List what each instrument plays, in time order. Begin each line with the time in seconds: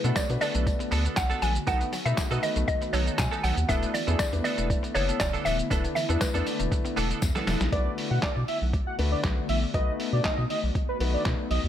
Already playing: ambient pad D3 A3 B3 F#4, synth pluck B4
0.04 analog synth bass B2, grand piano A3 B3 D4 F#4 B4, synth arpeggio sound B3, clean electric guitar B3 D4 A4, closed hi-hat, shaker
0.16 synth arpeggio sound A3, synth pluck D5, muted clean electric guitar stroke, kick, snare, clap, closed hi-hat, tambourine, shaker
0.29 analog synth bass B2, grand piano A3 B3 D4 F#4 B4, synth arpeggio sound D4, muted clean electric guitar stroke, closed hi-hat, shaker
0.41 synth arpeggio sound D3, clean electric guitar B3 D4 A4, synth pluck D5, open hi-hat, tambourine, shaker
0.54 analog synth bass B1, synth arpeggio sound A3, clean electric guitar B3 D4 A4, closed hi-hat, shaker
0.66 muted clean electric guitar stroke, kick, closed hi-hat, tambourine, shaker
0.79 synth arpeggio sound B3, muted clean electric guitar stroke, closed hi-hat, shaker
0.91 analog synth bass D2, synth arpeggio sound A3, clean electric guitar B3 D4 A4, open hi-hat, tambourine, shaker
1.05 clean electric guitar B3 D4 A4, closed hi-hat, shaker
1.17 analog synth bass B1, synth pluck F#5, kick, snare, clap, closed hi-hat, tambourine, shaker
1.30 clean electric guitar B3 D4 A4, closed hi-hat, shaker
1.42 analog synth bass A#1, synth arpeggio sound F#3, clean electric guitar B3 D4 A4, synth pluck G#5, open hi-hat, tambourine, shaker
1.55 muted clean electric guitar stroke, closed hi-hat, shaker
1.67 analog synth bass B1, synth arpeggio sound D#3, ambient pad D#3 B3, grand piano A3 B3 D#4 F#4 B4, clean electric guitar B3 D#4 A4, synth pluck F#5, kick, closed hi-hat, tambourine, shaker
1.80 synth arpeggio sound A3, muted clean electric guitar stroke, closed hi-hat, shaker
1.92 synth arpeggio sound F#3, muted clean electric guitar stroke, open hi-hat, tambourine, shaker
2.05 analog synth bass B2, grand piano A3 B3 D#4 F#4 B4, synth arpeggio sound B3, clean electric guitar B3 D#4 A4, synth pluck E5, closed hi-hat, shaker
2.17 synth arpeggio sound A3, muted clean electric guitar stroke, kick, snare, clap, closed hi-hat, tambourine, shaker
2.31 analog synth bass B2, grand piano A3 B3 D#4 F#4 B4, clean electric guitar B3 D#4 A4, synth arpeggio sound D#4, closed hi-hat, shaker
2.43 synth arpeggio sound D#3, synth pluck D#5, muted clean electric guitar stroke, open hi-hat, tambourine, shaker
2.56 analog synth bass B1, synth arpeggio sound A3, muted clean electric guitar stroke, closed hi-hat, shaker
2.68 synth pluck D#5, muted clean electric guitar stroke, kick, closed hi-hat, shaker
2.81 synth arpeggio sound B3, muted clean electric guitar stroke, closed hi-hat, shaker
2.93 analog synth bass B1, synth arpeggio sound A3, clean electric guitar B3 D#4 A4, synth pluck C#5, open hi-hat, tambourine, shaker
3.06 clean electric guitar B3 D#4 A4, closed hi-hat, shaker
3.18 analog synth bass B2, synth pluck G#5, muted clean electric guitar stroke, kick, snare, clap, closed hi-hat, tambourine, shaker
3.31 clean electric guitar B3 D#4 A4, closed hi-hat, shaker
3.43 analog synth bass B1, synth arpeggio sound F#3, clean electric guitar B3 D#4 A4, synth pluck F#5, open hi-hat, tambourine, shaker
3.57 analog synth bass D#2, muted clean electric guitar stroke, closed hi-hat, shaker
3.69 analog synth bass E1, ambient pad D3 A3 E4, synth arpeggio sound D3, grand piano A3 B3 D4 E4 B4, clean electric guitar B3 D4 A4, synth pluck E5, kick, closed hi-hat, tambourine, shaker
3.83 synth arpeggio sound A3, closed hi-hat, shaker
3.94 synth arpeggio sound E3, synth pluck D5, muted clean electric guitar stroke, open hi-hat, tambourine, shaker
4.07 analog synth bass E2, grand piano A3 B3 D4 E4 G#4, synth arpeggio sound B3, clean electric guitar B3 D4 A4, closed hi-hat, shaker
4.19 synth arpeggio sound A3, synth pluck D5, muted clean electric guitar stroke, kick, snare, clap, closed hi-hat, tambourine, shaker
4.33 analog synth bass E2, grand piano A3 B3 D4 E4 B4, synth arpeggio sound D4, muted clean electric guitar stroke, closed hi-hat, shaker
4.44 synth arpeggio sound D3, clean electric guitar B3 D4 A4, synth pluck D5, open hi-hat, tambourine, shaker
4.58 analog synth bass E1, synth arpeggio sound A3, clean electric guitar B3 D4 A4, closed hi-hat, shaker
4.70 muted clean electric guitar stroke, kick, closed hi-hat, shaker
4.83 synth arpeggio sound B3, muted clean electric guitar stroke, closed hi-hat, shaker
4.95 analog synth bass F#1, synth arpeggio sound A3, clean electric guitar B3 D4 A4, synth pluck C#5, open hi-hat, shaker
5.08 clean electric guitar B3 D4 A4, closed hi-hat, shaker
5.20 analog synth bass E1, synth pluck D5, kick, snare, clap, closed hi-hat, tambourine, shaker
5.33 clean electric guitar B3 D4 A4, closed hi-hat, shaker
5.45 analog synth bass D#1, synth arpeggio sound E3, clean electric guitar B3 D4 A4, synth pluck E5, open hi-hat, tambourine, shaker
5.59 muted clean electric guitar stroke, closed hi-hat, shaker
5.70 analog synth bass E1, synth arpeggio sound D3, grand piano A3 B3 D4 E4 B4, clean electric guitar B3 D4 A4, kick, closed hi-hat, tambourine, shaker
5.84 synth arpeggio sound A3, muted clean electric guitar stroke, closed hi-hat, shaker
5.95 synth arpeggio sound E3, synth pluck E5, muted clean electric guitar stroke, open hi-hat, tambourine, shaker
6.09 analog synth bass E2, grand piano A3 B3 D4 E4 B4, synth arpeggio sound B3, clean electric guitar B3 D4 A4, closed hi-hat, shaker
6.21 synth arpeggio sound A3, synth pluck B4, muted clean electric guitar stroke, kick, snare, clap, closed hi-hat, tambourine, shaker
6.34 analog synth bass E2, grand piano A3 B3 D4 E4 B4, clean electric guitar B3 D4 A4, synth arpeggio sound D4, closed hi-hat, shaker
6.46 synth arpeggio sound D3, muted clean electric guitar stroke, open hi-hat, tambourine, shaker
6.59 analog synth bass E1, synth arpeggio sound A3, muted clean electric guitar stroke, closed hi-hat, shaker
6.71 muted clean electric guitar stroke, kick, closed hi-hat, shaker
6.85 synth arpeggio sound B3, muted clean electric guitar stroke, closed hi-hat, shaker
6.96 analog synth bass E1, synth arpeggio sound A3, clean electric guitar B3 D4 A4, open hi-hat, tambourine, shaker
7.10 clean electric guitar B3 D4 A4, closed hi-hat, shaker
7.22 analog synth bass E2, muted clean electric guitar stroke, kick, snare, closed hi-hat, tambourine, shaker
7.35 clean electric guitar B3 D4 A4, snare, closed hi-hat, shaker
7.47 analog synth bass E1, synth arpeggio sound E3, clean electric guitar B3 D4 A4, snare, open hi-hat, tambourine, shaker
7.61 analog synth bass A#1, muted clean electric guitar stroke, snare, closed hi-hat, shaker
7.72 analog synth bass B1, ambient pad D3 A3 B3 F#4, grand piano A3 D4 F#4 B4, analog synth lead D5, kick, closed hi-hat
7.98 open hi-hat
8.11 analog synth bass B2, analog synth lead F#5
8.22 analog synth lead D5, kick, snare, clap, closed hi-hat
8.37 analog synth bass B2
8.48 analog synth lead E5, open hi-hat
8.62 analog synth bass B1
8.73 kick, closed hi-hat
8.87 analog synth lead F#5
8.99 analog synth bass D2, grand piano A3 D4 F#4 B4, open hi-hat
9.12 analog synth lead D5
9.24 analog synth bass B1, kick, snare, clap, closed hi-hat
9.49 analog synth bass A#1, analog synth lead E5, open hi-hat
9.74 analog synth bass B1, ambient pad D#3 F#4, grand piano A3 D#4 F#4 B4, analog synth lead D#5, kick, closed hi-hat
10.00 open hi-hat
10.13 analog synth bass B2, analog synth lead D5
10.24 analog synth lead D#5, kick, snare, clap, closed hi-hat
10.38 analog synth bass B2
10.50 analog synth lead D#5, open hi-hat
10.63 analog synth bass B1
10.75 kick, closed hi-hat
10.89 analog synth lead B4
11.00 analog synth bass B1, grand piano A3 D#4 F#4 B4, open hi-hat
11.14 analog synth lead D5
11.25 analog synth bass B2, kick, snare, clap, closed hi-hat
11.51 analog synth bass B1, analog synth lead D#5, open hi-hat
11.64 analog synth bass D#2